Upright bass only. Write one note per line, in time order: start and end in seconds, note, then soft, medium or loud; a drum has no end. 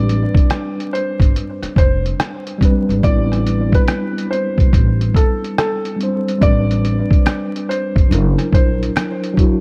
0.00 0.23 A1 loud
1.20 1.32 G1 medium
1.62 muted upright bass stroke soft
1.76 2.11 F1 medium
2.89 3.01 G#1 medium
3.03 3.73 A1 loud
4.58 4.70 B1 medium
4.73 5.08 A1 medium
6.42 6.99 A1 loud
7.96 8.08 G1 medium
8.11 8.34 F#1 loud
8.38 muted upright bass stroke soft
8.53 8.88 A#1 medium